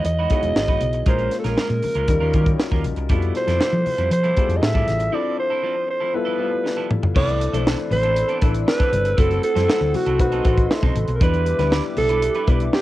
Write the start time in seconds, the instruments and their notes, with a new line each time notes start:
Already playing: grand piano F#3 B3 D#4 E4 G#4
0.04 fingered electric bass E2, alto saxophone D#5, muted clean electric guitar stroke, closed hi-hat
0.19 clean electric guitar G#3 D#4 F#4 B4
0.30 grand piano F#3 B3 D#4 E4 G#4, clean electric guitar G#3 D#4 F#4 B4, kick, closed hi-hat
0.42 fingered electric bass E1, muted clean electric guitar stroke, closed hi-hat, high conga
0.55 fingered electric bass G#1, muted clean electric guitar stroke, snare
0.68 clean electric guitar G#3 D#4 F#4 B4, kick, muted conga, high conga
0.81 fingered electric bass B1, muted clean electric guitar stroke, closed hi-hat, low conga
0.93 muted clean electric guitar stroke, closed hi-hat
1.06 fingered electric bass A#1, grand piano G#3 A#3 C#4 F4 A#4, clean electric guitar G#3 C#4 F4 A#4, alto saxophone C5, kick, closed hi-hat
1.18 closed hi-hat
1.31 muted clean electric guitar stroke, snare, closed hi-hat
1.39 alto saxophone A4
1.44 fingered electric bass A#1, clean electric guitar G#3 C#4 F4 A#4, alto saxophone A#4, snare, closed hi-hat, high conga
1.57 clean electric guitar G#3 C#4 F4 A#4, muted fingered electric bass stroke, snare
1.70 fingered electric bass A#2, muted clean electric guitar stroke, closed hi-hat, muted conga
1.82 muted clean electric guitar stroke, open hi-hat, high conga, low conga
1.95 fingered electric bass C#2, clean electric guitar G#3 C#4 F4 A#4, closed hi-hat
2.08 fingered electric bass D#2, grand piano G3 C#4 D#4 F4 A#4, muted clean electric guitar stroke, kick, closed hi-hat, muted conga
2.20 fingered electric bass D#2, clean electric guitar G3 C#4 F4 A#4, muted conga
2.33 fingered electric bass D#3, grand piano F#3 C#4 D#4 F4 A#4, clean electric guitar G3 C#4 F4 A#4, kick, closed hi-hat
2.39 grand piano G3
2.46 muted clean electric guitar stroke, kick, closed hi-hat, high conga
2.58 muted clean electric guitar stroke, snare
2.71 fingered electric bass D#2, clean electric guitar G3 C#4 F4 A#4, kick, high conga
2.84 fingered electric bass A#1, muted clean electric guitar stroke, closed hi-hat, low conga
2.96 fingered electric bass C2, muted clean electric guitar stroke, closed hi-hat
3.09 fingered electric bass F2, grand piano B2 G3 E4 F4 A4, clean electric guitar G3 B3 E4 A4, kick, closed hi-hat, muted conga
3.22 closed hi-hat, muted conga
3.35 alto saxophone C5, muted clean electric guitar stroke, snare, closed hi-hat
3.48 fingered electric bass F2, clean electric guitar G3 B3 E4 A4, snare, closed hi-hat, high conga
3.60 clean electric guitar G3 B3 E4 A4, snare
3.73 fingered electric bass F3, muted clean electric guitar stroke
3.86 muted clean electric guitar stroke, open hi-hat, high conga, low conga
3.98 fingered electric bass F2, clean electric guitar G3 B3 E4 A4, closed hi-hat
4.11 fingered electric bass F3, alto saxophone C5, muted clean electric guitar stroke, closed hi-hat, muted conga
4.24 clean electric guitar G3 B3 E4 A4, closed hi-hat, muted conga
4.36 grand piano G3 B3 E4 F4 G#4, clean electric guitar G3 B3 E4 A4, kick, closed hi-hat
4.44 grand piano A4
4.49 fingered electric bass F2, muted clean electric guitar stroke, closed hi-hat, high conga
4.57 alto saxophone D#5
4.62 fingered electric bass A2, alto saxophone E5, muted clean electric guitar stroke, snare, muted conga
4.74 clean electric guitar G3 B3 E4 A4, kick, muted conga, high conga
4.87 fingered electric bass A1, muted clean electric guitar stroke, snare, closed hi-hat, low conga
5.00 muted clean electric guitar stroke, closed hi-hat
5.12 clean electric guitar F3 C4 E4 A4, grand piano F3 C4 D4 E4 A4, alto saxophone D5
5.38 alto saxophone C5, muted clean electric guitar stroke
5.50 clean electric guitar F3 C4 E4 A4
5.63 clean electric guitar F3 C4 E4 A4
5.75 muted clean electric guitar stroke
5.88 alto saxophone C5, muted clean electric guitar stroke
6.00 clean electric guitar F3 C4 E4 A4
6.13 grand piano G3 B3 E4 F4 A4, alto saxophone B4, muted clean electric guitar stroke
6.25 clean electric guitar F3 B3 E4 A4
6.38 clean electric guitar F3 B3 E4 A4, grand piano G3 A3 E4 F4 A4
6.45 grand piano B3
6.51 muted clean electric guitar stroke
6.64 muted clean electric guitar stroke, snare
6.77 clean electric guitar F3 B3 E4 A4
6.90 muted clean electric guitar stroke, mid tom
7.03 muted clean electric guitar stroke, floor tom
7.15 fingered electric bass C2, clean electric guitar E3 B3 D4 A4, grand piano A3 C4 D4 E4 B4, analog synth pad A4 D5 B5 E6, alto saxophone D5, kick, crash, muted conga
7.29 closed hi-hat, muted conga
7.41 muted clean electric guitar stroke, closed hi-hat
7.53 fingered electric bass B1, clean electric guitar E3 B3 D4 A4, grand piano A3 C4 D4 E4 C5, closed hi-hat, high conga
7.66 clean electric guitar E3 B3 D4 A4, snare, muted conga
7.79 muted clean electric guitar stroke, closed hi-hat, muted conga
7.91 fingered electric bass A1, alto saxophone C5, muted clean electric guitar stroke, open hi-hat, high conga, low conga
8.04 clean electric guitar E3 B3 D4 A4, closed hi-hat
8.16 muted clean electric guitar stroke, closed hi-hat
8.29 clean electric guitar E3 B3 D4 A4, closed hi-hat, muted conga
8.41 fingered electric bass A1, clean electric guitar E3 B3 D4 A4, grand piano A3 C4 D4 E4 B4, kick, closed hi-hat
8.54 muted clean electric guitar stroke, closed hi-hat
8.67 alto saxophone B4, muted clean electric guitar stroke, snare, muted conga
8.80 clean electric guitar E3 B3 D4 A4, kick, closed hi-hat, high conga
8.92 fingered electric bass G1, muted clean electric guitar stroke, closed hi-hat, low conga
9.05 muted clean electric guitar stroke, closed hi-hat
9.17 fingered electric bass F#1, clean electric guitar F#3 C4 E4 A4, grand piano A3 C4 E4 F#4 C5, alto saxophone A4, analog synth pad F#5, kick, closed hi-hat, muted conga
9.31 closed hi-hat, muted conga
9.43 alto saxophone A4, muted clean electric guitar stroke, closed hi-hat
9.55 fingered electric bass F#2, clean electric guitar F#3 C4 E4 A4, grand piano G3 C4 E4 F#4 C5, snare, closed hi-hat, high conga
9.61 grand piano A3
9.68 clean electric guitar F#3 C4 E4 A4, snare, muted conga
9.81 fingered electric bass D2, muted clean electric guitar stroke
9.94 alto saxophone F#4, muted clean electric guitar stroke, open hi-hat, high conga, low conga
10.06 fingered electric bass C2, clean electric guitar F#3 C4 E4 A4, closed hi-hat
10.19 fingered electric bass B1, grand piano A3 C4 D#4 F#4 B4, alto saxophone F#4, analog synth pad A4 D#5 C6, muted clean electric guitar stroke, kick, closed hi-hat, muted conga
10.32 clean electric guitar F#3 C4 D#4 A4, closed hi-hat, muted conga
10.45 fingered electric bass A1, clean electric guitar F#3 C4 D#4 A4, grand piano A3 C4 D#4 F#4 B4, kick, closed hi-hat
10.58 muted clean electric guitar stroke, kick, closed hi-hat
10.71 muted clean electric guitar stroke, snare, muted conga
10.82 fingered electric bass B1, clean electric guitar F#3 C4 D#4 A4, kick, muted conga, high conga
10.95 fingered electric bass A1, muted clean electric guitar stroke, closed hi-hat, low conga
11.08 fingered electric bass B1, muted clean electric guitar stroke, closed hi-hat
11.15 alto saxophone A#4
11.20 fingered electric bass E2, grand piano G3 B3 D4 E4 B4, clean electric guitar G3 D4 E4 B4, analog synth pad G4 E5 D6, alto saxophone B4, kick, closed hi-hat
11.34 closed hi-hat, muted conga
11.46 muted clean electric guitar stroke, closed hi-hat
11.58 fingered electric bass D2, grand piano G3 B3 D4 E4 B4, clean electric guitar G3 D4 E4 B4, snare, closed hi-hat, high conga
11.71 clean electric guitar G3 D4 E4 B4, snare
11.84 muted clean electric guitar stroke, muted conga
11.97 fingered electric bass B1, alto saxophone A4, muted clean electric guitar stroke, open hi-hat, high conga, low conga
12.09 clean electric guitar G3 D4 E4 B4, closed hi-hat
12.22 muted clean electric guitar stroke, closed hi-hat, muted conga
12.35 clean electric guitar G3 D4 E4 B4, closed hi-hat, muted conga
12.47 fingered electric bass B1, grand piano G3 B3 D4 E4 B4, clean electric guitar G3 D4 E4 B4, kick, closed hi-hat
12.60 muted clean electric guitar stroke, closed hi-hat
12.73 alto saxophone G4, muted clean electric guitar stroke, snare, muted conga